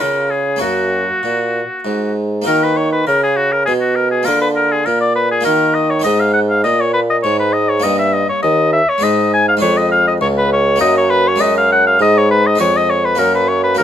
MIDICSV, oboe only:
0, 0, Header, 1, 2, 480
1, 0, Start_track
1, 0, Key_signature, -6, "minor"
1, 0, Tempo, 610998
1, 487, Time_signature, 3, 2, 24, 8
1, 2888, Tempo, 595238
1, 7683, Key_signature, 6, "major"
1, 11079, End_track
2, 0, Start_track
2, 0, Title_t, "Oboe"
2, 0, Program_c, 0, 68
2, 5, Note_on_c, 0, 70, 59
2, 239, Note_on_c, 0, 68, 65
2, 251, Note_off_c, 0, 70, 0
2, 476, Note_off_c, 0, 68, 0
2, 481, Note_on_c, 0, 66, 67
2, 1672, Note_off_c, 0, 66, 0
2, 1939, Note_on_c, 0, 70, 78
2, 2068, Note_on_c, 0, 71, 69
2, 2080, Note_off_c, 0, 70, 0
2, 2175, Note_on_c, 0, 73, 79
2, 2187, Note_off_c, 0, 71, 0
2, 2292, Note_off_c, 0, 73, 0
2, 2296, Note_on_c, 0, 71, 66
2, 2406, Note_off_c, 0, 71, 0
2, 2411, Note_on_c, 0, 70, 81
2, 2529, Note_off_c, 0, 70, 0
2, 2538, Note_on_c, 0, 68, 70
2, 2640, Note_on_c, 0, 66, 70
2, 2652, Note_off_c, 0, 68, 0
2, 2765, Note_on_c, 0, 70, 71
2, 2777, Note_off_c, 0, 66, 0
2, 2868, Note_off_c, 0, 70, 0
2, 2873, Note_on_c, 0, 68, 75
2, 2930, Note_off_c, 0, 68, 0
2, 2993, Note_on_c, 0, 66, 67
2, 3113, Note_on_c, 0, 70, 77
2, 3125, Note_off_c, 0, 66, 0
2, 3231, Note_off_c, 0, 70, 0
2, 3236, Note_on_c, 0, 68, 69
2, 3351, Note_on_c, 0, 70, 78
2, 3363, Note_off_c, 0, 68, 0
2, 3477, Note_off_c, 0, 70, 0
2, 3482, Note_on_c, 0, 71, 67
2, 3538, Note_off_c, 0, 71, 0
2, 3600, Note_on_c, 0, 70, 76
2, 3729, Note_on_c, 0, 68, 70
2, 3741, Note_off_c, 0, 70, 0
2, 3838, Note_on_c, 0, 70, 74
2, 3850, Note_off_c, 0, 68, 0
2, 3955, Note_off_c, 0, 70, 0
2, 3960, Note_on_c, 0, 74, 75
2, 4076, Note_off_c, 0, 74, 0
2, 4081, Note_on_c, 0, 71, 76
2, 4202, Note_off_c, 0, 71, 0
2, 4207, Note_on_c, 0, 68, 68
2, 4313, Note_off_c, 0, 68, 0
2, 4317, Note_on_c, 0, 70, 75
2, 4556, Note_on_c, 0, 75, 78
2, 4568, Note_off_c, 0, 70, 0
2, 4679, Note_on_c, 0, 73, 72
2, 4692, Note_off_c, 0, 75, 0
2, 4790, Note_off_c, 0, 73, 0
2, 4795, Note_on_c, 0, 75, 89
2, 4922, Note_on_c, 0, 77, 76
2, 4935, Note_off_c, 0, 75, 0
2, 5026, Note_off_c, 0, 77, 0
2, 5031, Note_on_c, 0, 78, 77
2, 5088, Note_off_c, 0, 78, 0
2, 5163, Note_on_c, 0, 77, 73
2, 5271, Note_off_c, 0, 77, 0
2, 5276, Note_on_c, 0, 75, 84
2, 5411, Note_on_c, 0, 73, 75
2, 5424, Note_off_c, 0, 75, 0
2, 5510, Note_off_c, 0, 73, 0
2, 5515, Note_on_c, 0, 71, 80
2, 5571, Note_off_c, 0, 71, 0
2, 5649, Note_on_c, 0, 75, 77
2, 5702, Note_off_c, 0, 75, 0
2, 5752, Note_on_c, 0, 73, 87
2, 5877, Note_off_c, 0, 73, 0
2, 5888, Note_on_c, 0, 71, 73
2, 5995, Note_on_c, 0, 75, 80
2, 6007, Note_off_c, 0, 71, 0
2, 6123, Note_on_c, 0, 73, 77
2, 6135, Note_off_c, 0, 75, 0
2, 6237, Note_on_c, 0, 75, 88
2, 6250, Note_off_c, 0, 73, 0
2, 6359, Note_off_c, 0, 75, 0
2, 6364, Note_on_c, 0, 76, 75
2, 6482, Note_on_c, 0, 75, 83
2, 6494, Note_off_c, 0, 76, 0
2, 6604, Note_off_c, 0, 75, 0
2, 6609, Note_on_c, 0, 73, 78
2, 6711, Note_off_c, 0, 73, 0
2, 6716, Note_on_c, 0, 75, 88
2, 6956, Note_off_c, 0, 75, 0
2, 6961, Note_on_c, 0, 76, 87
2, 7091, Note_on_c, 0, 73, 86
2, 7104, Note_off_c, 0, 76, 0
2, 7206, Note_on_c, 0, 75, 88
2, 7218, Note_off_c, 0, 73, 0
2, 7444, Note_off_c, 0, 75, 0
2, 7448, Note_on_c, 0, 80, 94
2, 7563, Note_off_c, 0, 80, 0
2, 7571, Note_on_c, 0, 77, 82
2, 7623, Note_off_c, 0, 77, 0
2, 7678, Note_on_c, 0, 73, 94
2, 7803, Note_on_c, 0, 75, 83
2, 7815, Note_off_c, 0, 73, 0
2, 7912, Note_off_c, 0, 75, 0
2, 7917, Note_on_c, 0, 77, 89
2, 8037, Note_off_c, 0, 77, 0
2, 8049, Note_on_c, 0, 75, 76
2, 8101, Note_off_c, 0, 75, 0
2, 8158, Note_on_c, 0, 73, 88
2, 8213, Note_off_c, 0, 73, 0
2, 8294, Note_on_c, 0, 71, 80
2, 8405, Note_off_c, 0, 71, 0
2, 8411, Note_on_c, 0, 73, 90
2, 8634, Note_off_c, 0, 73, 0
2, 8639, Note_on_c, 0, 75, 98
2, 8757, Note_off_c, 0, 75, 0
2, 8774, Note_on_c, 0, 73, 84
2, 8877, Note_on_c, 0, 71, 96
2, 8889, Note_off_c, 0, 73, 0
2, 9018, Note_on_c, 0, 73, 88
2, 9030, Note_off_c, 0, 71, 0
2, 9121, Note_on_c, 0, 75, 99
2, 9133, Note_off_c, 0, 73, 0
2, 9240, Note_off_c, 0, 75, 0
2, 9256, Note_on_c, 0, 77, 89
2, 9366, Note_off_c, 0, 77, 0
2, 9372, Note_on_c, 0, 78, 93
2, 9484, Note_off_c, 0, 78, 0
2, 9492, Note_on_c, 0, 77, 91
2, 9604, Note_off_c, 0, 77, 0
2, 9615, Note_on_c, 0, 75, 103
2, 9742, Note_on_c, 0, 73, 92
2, 9755, Note_off_c, 0, 75, 0
2, 9845, Note_off_c, 0, 73, 0
2, 9850, Note_on_c, 0, 71, 92
2, 9976, Note_on_c, 0, 75, 93
2, 9988, Note_off_c, 0, 71, 0
2, 10081, Note_off_c, 0, 75, 0
2, 10086, Note_on_c, 0, 73, 95
2, 10216, Note_on_c, 0, 75, 88
2, 10228, Note_off_c, 0, 73, 0
2, 10324, Note_on_c, 0, 73, 87
2, 10336, Note_off_c, 0, 75, 0
2, 10447, Note_on_c, 0, 71, 83
2, 10459, Note_off_c, 0, 73, 0
2, 10556, Note_on_c, 0, 70, 94
2, 10568, Note_off_c, 0, 71, 0
2, 10678, Note_off_c, 0, 70, 0
2, 10685, Note_on_c, 0, 71, 82
2, 10798, Note_on_c, 0, 73, 92
2, 10810, Note_off_c, 0, 71, 0
2, 10913, Note_off_c, 0, 73, 0
2, 10918, Note_on_c, 0, 71, 82
2, 11029, Note_off_c, 0, 71, 0
2, 11033, Note_on_c, 0, 70, 96
2, 11079, Note_off_c, 0, 70, 0
2, 11079, End_track
0, 0, End_of_file